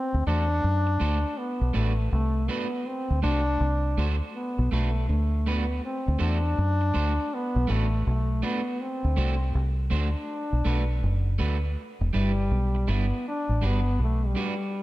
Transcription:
Already playing: trombone C4
0.14 fingered electric bass D2
0.27 fingered electric bass E2, clean electric guitar A3 D4 F#4 C5, trombone D4
0.64 fingered electric bass F#2
0.87 muted clean electric guitar stroke
1.00 fingered electric bass D2, clean electric guitar A3 D4 F#4 C5
1.38 trombone B3
1.61 fingered electric bass B1
1.74 fingered electric bass A1, clean electric guitar A3 D4 F#4 B4, trombone A3
2.12 fingered electric bass C2, trombone A3
2.49 clean electric guitar A3 D4 F#4 B4, trombone B3
2.86 trombone C4
3.10 fingered electric bass D2
3.23 fingered electric bass C2, clean electric guitar A3 D4 F#4 C5, trombone D4
3.61 fingered electric bass C2
3.98 fingered electric bass D2, clean electric guitar A3 D4 F#4 C5
4.35 trombone B3
4.59 fingered electric bass B1
4.72 fingered electric bass B1, clean electric guitar A3 D4 F#4 B4, trombone A3
5.09 fingered electric bass D2, trombone A3
5.46 clean electric guitar A3 D4 F#4 B4, trombone B3
5.85 trombone C4
6.08 fingered electric bass D2
6.19 fingered electric bass E2, clean electric guitar A3 D4 F#4 C5, trombone D4
6.58 fingered electric bass F#2
6.81 muted clean electric guitar stroke
6.94 fingered electric bass D2, clean electric guitar A3 D4 F#4 C5
7.34 trombone B3
7.56 fingered electric bass B1
7.67 fingered electric bass A1, clean electric guitar A3 D4 F#4 B4, trombone A3
8.06 fingered electric bass B1, trombone A3
8.42 clean electric guitar A3 D4 F#4 B4, trombone B3
8.81 trombone C4
9.04 fingered electric bass D2
9.17 fingered electric bass C2, clean electric guitar A3 D4 F#4 C5
9.55 fingered electric bass C2
9.90 fingered electric bass D2, clean electric guitar A3 D4 F#4 C5
9.94 trombone D4
10.53 fingered electric bass B1
10.65 fingered electric bass B1, clean electric guitar A3 D4 F#4 B4
11.03 fingered electric bass F#1
11.39 fingered electric bass D2, clean electric guitar A3 D4 F#4 B4
12.01 fingered electric bass E1
12.13 fingered electric bass G1, clean electric guitar G3 D4 E4 B4, trombone G3
12.51 fingered electric bass B1
12.75 muted clean electric guitar stroke
12.88 fingered electric bass G1, clean electric guitar G3 D4 E4 B4, trombone B3
13.28 trombone D4
13.49 fingered electric bass A1
13.62 fingered electric bass G1, clean electric guitar G3 D4 F#4 B4
13.66 trombone B3
13.99 fingered electric bass B1, trombone A3
14.26 trombone G3
14.35 clean electric guitar G3 D4 F#4 B4

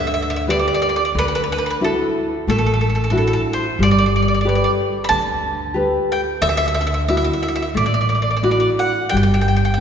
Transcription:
Already playing: upright bass D2, nylon-string guitar D3
0.07 mandolin E5
0.14 mandolin E5
0.22 mandolin E5
0.30 mandolin E5
0.36 mandolin E5
0.48 nylon-string guitar G4 B4 D5, mandolin D5
0.59 mandolin D5
0.68 mandolin D5
0.74 mandolin D5
0.82 mandolin D5
0.89 mandolin D5
0.96 mandolin D5
1.05 mandolin D5
1.15 upright bass D2, nylon-string guitar D3, mandolin B4
1.28 mandolin B4
1.35 mandolin B4
1.44 mandolin B4
1.52 mandolin B4
1.58 mandolin B4
1.66 mandolin B4
1.71 mandolin B4
1.81 nylon-string guitar D4 E4 F#4, mandolin A4
2.47 upright bass A1, nylon-string guitar A3, mandolin A4
2.58 mandolin A4
2.66 mandolin A4
2.74 mandolin A4
2.81 mandolin A4
2.90 mandolin A4
2.95 mandolin A4
3.04 mandolin A4
3.10 nylon-string guitar D4 E4 F#4, mandolin A4
3.18 mandolin A4
3.27 mandolin A4
3.33 mandolin A4
3.53 mandolin C5
3.79 upright bass G1, nylon-string guitar G3, mandolin D5
3.91 mandolin D5
3.99 mandolin D5
4.16 mandolin D5
4.22 mandolin D5
4.28 mandolin D5
4.34 mandolin D5
4.41 nylon-string guitar G4, mandolin D5
4.45 nylon-string guitar A4 B4, mandolin D5
4.55 mandolin D5
4.64 mandolin D5
5.04 mandolin B5
5.09 upright bass D2, nylon-string guitar D3, mandolin A5
5.74 nylon-string guitar G4 A4 B4
6.12 mandolin G5
6.41 upright bass D2, nylon-string guitar D3, mandolin E5
6.49 mandolin E5
6.57 mandolin E5
6.68 mandolin E5
6.75 mandolin E5
6.81 mandolin E5
6.87 mandolin E5
6.94 mandolin E5
7.08 nylon-string guitar D4 E4 F#4, mandolin E5
7.17 mandolin E5
7.24 mandolin E5
7.33 mandolin E5
7.43 mandolin E5
7.48 mandolin E5
7.56 mandolin E5
7.62 mandolin E5
7.74 upright bass A1, nylon-string guitar A3, mandolin D5
7.86 mandolin D5
7.94 mandolin D5
8.01 mandolin D5
8.09 mandolin D5
8.15 mandolin D5
8.22 mandolin D5
8.31 mandolin D5
8.37 mandolin D5
8.43 nylon-string guitar D4 E4 F#4, mandolin D5
8.51 mandolin D5
8.60 mandolin D5
8.79 mandolin F#5
9.09 upright bass G1, nylon-string guitar G3, mandolin G5
9.17 mandolin G5
9.23 mandolin G5
9.34 mandolin G5
9.41 mandolin G5
9.48 mandolin G5
9.56 mandolin G5
9.65 mandolin G5
9.74 mandolin G5

